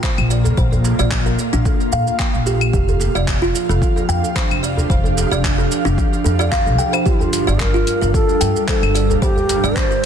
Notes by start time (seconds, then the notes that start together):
Already playing: A#2 A#3 F4 F5
0.03 C5, kick, clap, shaker
0.18 A#1, claves, shaker
0.30 D5, shaker
0.44 djembe slap, djembe bass, shaker
0.57 A#1 C5, kick, shaker
0.72 djembe bass, shaker
0.84 djembe slap, djembe tone, shaker
0.99 A#1 D5, shaker
1.11 kick, clap, shaker
1.26 A#4, shaker
1.39 djembe slap, shaker
1.53 A#1 D4, shaker
1.66 kick, djembe tone, shaker
1.80 djembe slap, shaker
1.92 A#2 F5, djembe tone, shaker
2.07 djembe tone, shaker
2.19 G5, kick, clap, djembe slap, shaker
2.34 A#1, shaker
2.46 G4, djembe tone, shaker
2.61 claves, shaker
2.73 F1 F3 G4, kick, shaker
2.89 djembe bass, shaker
3.00 djembe slap, djembe tone, shaker
3.04 D4
3.15 F1 D5, shaker
3.28 kick, clap, shaker
3.33 G4
3.42 F4, shaker
3.54 djembe slap, shaker
3.69 F1 A4, shaker
3.82 kick, shaker
3.96 djembe tone, shaker
4.09 F2 G5, djembe tone, shaker
4.23 djembe tone, shaker
4.36 C5, kick, clap, shaker
4.50 F1, claves, shaker
4.63 D5, shaker
4.77 djembe slap, djembe bass, shaker
4.90 F1 C5, kick, shaker
5.04 djembe bass, shaker
5.17 djembe slap, djembe tone, shaker
5.31 F1 D5, shaker
5.44 kick, clap, shaker
5.58 A4, shaker
5.71 djembe slap, shaker
5.85 F1 D4, shaker
5.98 kick, djembe tone, shaker
6.13 djembe slap, shaker
6.24 F2 A4, djembe tone, shaker
6.39 D5, djembe tone, shaker
6.52 F5, kick, clap, shaker
6.66 C2 A4, shaker
6.78 G5, djembe tone, shaker
6.93 C5, claves, shaker
7.06 G1 G3 F4 G4, kick, shaker
7.14 E4
7.21 F4, djembe bass, shaker
7.32 open hi-hat, djembe slap, djembe tone, shaker
7.47 G1 D5, shaker
7.60 A#4, kick, clap, shaker
7.74 F4, shaker
7.84 A#4, open hi-hat, djembe slap, shaker
8.01 G1 A#4, shaker
8.14 A4, kick, shaker
8.29 djembe tone, shaker
8.41 G2 G5, open hi-hat, djembe tone, shaker
8.56 djembe tone, shaker
8.68 A4 C5, kick, clap, shaker
8.83 G1, claves, shaker
8.95 D5, open hi-hat, shaker
9.10 djembe slap, djembe bass, shaker
9.22 G1 G4 C5, kick, shaker
9.36 djembe bass, shaker
9.49 open hi-hat, djembe slap, djembe tone, shaker
9.64 G1 D5, shaker
9.76 C5, kick, clap, shaker
9.91 A#4, shaker